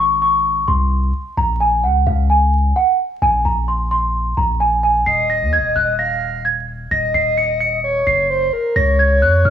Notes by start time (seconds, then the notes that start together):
Already playing: G#1
0.00 C#6
0.22 C#6
0.68 C2 C6
1.37 A#1 A#5
1.60 G#5
1.84 C#2 F#5
2.07 C#2 F5
2.30 G#5
2.76 F#5
3.22 A#1 G#5
3.45 A#1 A#5
3.68 C6
3.91 C6
4.37 A#1 A#5
4.60 G#5
4.83 G#5
5.06 D#1 D#5 C7
5.30 A#6
5.41 D#2
5.53 G#6
5.59 D#1
5.76 D#1 F#6
5.99 F5 A#6
6.45 G#6
6.91 D#1 D#5 A#6
7.14 D#1 C7
7.37 C#7
7.60 C#7
7.84 C#5
8.07 F#1 C7
8.30 C5
8.53 A#4
8.76 C#2 C#5 A#6
8.99 G#6
9.22 F2 F#6
9.45 F2 F6